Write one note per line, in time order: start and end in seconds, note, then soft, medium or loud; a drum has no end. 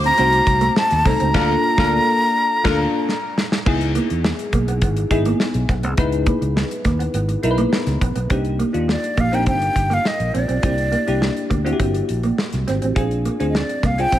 0.00 0.18 A3 medium
0.00 1.01 A3 medium
0.00 0.18 C4 medium
0.00 0.12 C4 medium
0.00 0.18 D#4 medium
0.00 0.11 F#4 medium
0.00 1.01 F#4 medium
0.00 1.01 C5 loud
0.04 0.80 A#5 loud
0.04 closed hi-hat medium
0.18 0.39 C2 loud
0.18 0.96 A3 medium
0.18 0.97 C4 medium
0.18 0.27 C4 medium
0.18 0.97 D#4 medium
0.18 0.97 F#4 medium
0.18 closed hi-hat medium
0.33 muted clean electric guitar stroke soft
0.33 closed hi-hat soft
0.47 0.68 C2 medium
0.47 kick medium
0.47 closed hi-hat medium
0.61 0.70 A3 medium
0.61 closed hi-hat soft
0.76 1.08 A5 medium
0.76 muted clean electric guitar stroke soft
0.76 snare loud
0.91 1.02 D#2 medium
0.91 snare soft
0.91 closed hi-hat soft
1.05 1.16 C2 medium
1.05 1.31 A3 medium
1.05 1.31 C4 medium
1.05 1.14 C4 medium
1.05 1.32 D#4 medium
1.05 1.32 A4 medium
1.05 3.38 A#5 loud
1.05 kick loud
1.05 snare soft
1.05 open hi-hat medium
1.20 1.31 C#2 medium
1.20 1.29 C4 medium
1.20 closed hi-hat medium
1.34 1.54 D2 loud
1.34 1.54 A#3 loud
1.34 1.49 D4 loud
1.34 1.54 D4 loud
1.34 1.49 F4 loud
1.34 1.55 F4 loud
1.34 1.55 A4 medium
1.34 1.49 A#4 loud
1.34 kick loud
1.34 snare loud
1.34 crash medium
1.78 1.98 D2 loud
1.78 1.98 A#3 loud
1.78 1.92 D4 loud
1.78 1.98 D4 loud
1.78 1.93 F4 loud
1.78 1.98 F4 loud
1.78 1.98 A4 loud
1.78 1.93 A#4 loud
1.78 kick loud
1.78 snare loud
2.64 2.84 D2 loud
2.64 2.84 A#3 loud
2.64 2.79 D4 loud
2.64 2.85 D4 loud
2.64 2.79 F4 loud
2.64 2.85 F4 loud
2.64 2.85 A4 loud
2.64 2.79 A#4 loud
2.64 kick loud
2.64 snare loud
2.64 crash medium
3.09 snare medium
3.38 snare medium
3.52 snare medium
3.66 3.97 C#2 medium
3.66 4.71 B3 medium
3.66 3.75 B3 medium
3.66 4.71 D#4 medium
3.66 4.71 E4 medium
3.66 4.71 G#4 loud
3.66 kick loud
3.66 crash medium
3.81 closed hi-hat soft
3.95 4.04 A#3 medium
3.95 closed hi-hat medium
4.10 4.31 E2 medium
4.10 muted clean electric guitar stroke soft
4.10 closed hi-hat soft
4.24 muted clean electric guitar stroke soft
4.24 snare loud
4.39 closed hi-hat soft
4.53 4.84 B1 medium
4.53 4.62 A#3 medium
4.53 kick medium
4.53 closed hi-hat medium
4.68 4.77 B3 medium
4.68 closed hi-hat soft
4.82 5.03 G#1 medium
4.82 4.92 B3 medium
4.82 kick medium
4.82 closed hi-hat medium
4.96 muted clean electric guitar stroke soft
4.96 closed hi-hat soft
5.10 5.31 G#1 medium
5.10 5.89 B3 medium
5.10 5.90 D#4 medium
5.10 5.90 E4 medium
5.10 5.90 G#4 medium
5.10 kick medium
5.10 closed hi-hat medium
5.25 5.35 A#3 medium
5.25 closed hi-hat soft
5.40 muted clean electric guitar stroke soft
5.40 snare loud
5.54 5.65 B1 medium
5.54 closed hi-hat soft
5.69 5.84 B1 medium
5.69 5.78 B3 medium
5.69 kick medium
5.69 snare soft
5.69 closed hi-hat medium
5.83 5.94 C2 medium
5.83 5.92 B3 medium
5.83 closed hi-hat soft
5.97 6.29 C#2 loud
5.97 6.06 B3 medium
5.97 7.03 B3 medium
5.97 7.03 D#4 medium
5.97 7.03 E4 medium
5.97 7.03 B4 medium
5.97 kick loud
5.97 closed hi-hat medium
6.12 closed hi-hat soft
6.26 6.35 A#3 medium
6.26 kick medium
6.26 closed hi-hat medium
6.41 6.62 C#2 medium
6.41 muted clean electric guitar stroke soft
6.41 closed hi-hat soft
6.56 muted clean electric guitar stroke soft
6.56 snare loud
6.71 closed hi-hat soft
6.85 7.06 D#2 medium
6.85 6.94 A#3 medium
6.85 kick medium
6.85 snare soft
6.85 closed hi-hat medium
6.99 7.08 B3 medium
6.99 closed hi-hat soft
7.14 7.35 G#1 medium
7.14 7.23 B3 medium
7.14 closed hi-hat medium
7.28 muted clean electric guitar stroke soft
7.28 closed hi-hat soft
7.43 7.64 B1 medium
7.43 8.22 B3 medium
7.43 8.22 D#4 medium
7.43 8.22 E4 medium
7.43 7.50 A#4 medium
7.43 closed hi-hat medium
7.51 8.26 B4 medium
7.58 7.67 A#3 medium
7.58 closed hi-hat soft
7.73 muted clean electric guitar stroke soft
7.73 snare loud
7.87 7.97 C#2 medium
7.87 snare soft
7.87 closed hi-hat soft
8.01 8.12 A#1 medium
8.01 8.10 B3 medium
8.01 kick medium
8.01 closed hi-hat medium
8.16 8.26 B1 medium
8.16 8.24 B3 medium
8.16 closed hi-hat soft
8.30 8.62 C2 medium
8.30 8.70 A#3 medium
8.30 8.39 C4 medium
8.30 8.70 D4 medium
8.30 8.70 D#4 medium
8.30 8.70 G4 medium
8.30 kick loud
8.30 closed hi-hat medium
8.45 closed hi-hat soft
8.59 8.68 A#3 medium
8.59 closed hi-hat medium
8.73 8.95 D#2 medium
8.73 9.26 A#3 medium
8.73 9.26 D4 medium
8.73 9.27 D#4 medium
8.73 9.27 F4 medium
8.73 muted clean electric guitar stroke soft
8.73 closed hi-hat soft
8.88 9.22 D5 medium
8.88 muted clean electric guitar stroke soft
8.88 snare medium
9.04 closed hi-hat soft
9.17 9.48 A#1 medium
9.17 9.26 A#3 medium
9.17 9.36 F5 medium
9.17 kick medium
9.17 closed hi-hat medium
9.32 10.37 A#3 medium
9.32 9.41 C4 medium
9.32 10.37 D4 medium
9.32 10.38 D#4 medium
9.32 10.38 A#4 medium
9.32 9.47 G5 medium
9.32 closed hi-hat soft
9.46 9.68 G1 medium
9.46 9.55 C4 medium
9.46 9.95 G5 medium
9.46 kick medium
9.46 closed hi-hat medium
9.61 muted clean electric guitar stroke soft
9.61 closed hi-hat soft
9.76 9.97 G1 medium
9.76 kick medium
9.76 closed hi-hat medium
9.90 9.99 A#3 medium
9.90 10.08 F5 medium
9.90 closed hi-hat soft
10.05 10.35 D#5 medium
10.05 muted clean electric guitar stroke soft
10.05 snare medium
10.20 10.30 A#1 medium
10.20 closed hi-hat soft
10.34 10.45 A#1 medium
10.34 10.43 C4 medium
10.34 11.47 D5 medium
10.34 closed hi-hat medium
10.48 10.59 B1 medium
10.48 10.57 C4 medium
10.48 closed hi-hat soft
10.62 10.94 C2 medium
10.62 11.02 A#3 medium
10.62 10.72 C4 medium
10.62 11.03 D4 medium
10.62 11.03 E4 medium
10.62 11.03 G4 medium
10.62 kick loud
10.62 closed hi-hat medium
10.78 closed hi-hat soft
10.92 11.01 A#3 medium
10.92 closed hi-hat medium
11.07 11.28 C2 medium
11.07 11.60 A#3 medium
11.07 11.60 D4 medium
11.07 11.60 E4 medium
11.07 11.60 G4 medium
11.07 muted clean electric guitar stroke soft
11.07 closed hi-hat soft
11.21 muted clean electric guitar stroke soft
11.21 snare medium
11.37 closed hi-hat soft
11.50 11.72 D2 medium
11.50 11.59 A#3 medium
11.50 kick medium
11.50 closed hi-hat medium
11.65 12.70 A#3 medium
11.65 11.73 C4 medium
11.65 12.70 D4 medium
11.65 12.70 E4 medium
11.65 11.72 F#4 medium
11.65 closed hi-hat soft
11.72 12.74 G4 medium
11.80 12.01 G1 medium
11.80 11.88 C4 medium
11.80 kick medium
11.80 closed hi-hat medium
11.94 muted clean electric guitar stroke soft
11.94 closed hi-hat soft
12.09 12.30 A#1 medium
12.09 closed hi-hat medium
12.23 12.32 A#3 medium
12.23 closed hi-hat soft
12.38 muted clean electric guitar stroke soft
12.38 snare medium
12.52 12.64 C2 medium
12.52 snare soft
12.52 closed hi-hat soft
12.68 12.78 G#1 medium
12.68 12.76 C4 medium
12.68 snare soft
12.68 closed hi-hat medium
12.82 12.93 A1 medium
12.82 12.91 C4 medium
12.82 closed hi-hat soft
12.95 13.28 A#1 loud
12.95 13.35 C4 medium
12.95 13.05 C4 medium
12.95 13.35 D4 medium
12.95 13.35 F4 medium
12.95 13.35 G#4 medium
12.95 kick loud
12.95 closed hi-hat medium
13.11 closed hi-hat soft
13.25 13.34 A#3 medium
13.25 closed hi-hat medium
13.40 13.61 D2 medium
13.40 13.92 C4 medium
13.40 13.92 D4 medium
13.40 13.92 F4 medium
13.40 13.93 G#4 medium
13.40 muted clean electric guitar stroke soft
13.40 closed hi-hat soft
13.50 13.58 D#5 medium
13.55 13.87 D5 medium
13.55 muted clean electric guitar stroke soft
13.55 snare medium
13.69 closed hi-hat soft
13.83 14.04 C2 medium
13.83 13.92 A#3 medium
13.83 14.02 F5 medium
13.83 kick medium
13.83 snare soft
13.83 closed hi-hat medium
13.98 14.19 C4 medium
13.98 14.07 C4 medium
13.98 14.19 D4 medium
13.98 14.19 F4 medium
13.98 14.19 G#4 medium
13.98 14.19 G5 loud
13.98 closed hi-hat soft
14.12 14.19 A#1 medium
14.12 14.19 C4 medium
14.12 kick medium
14.12 closed hi-hat medium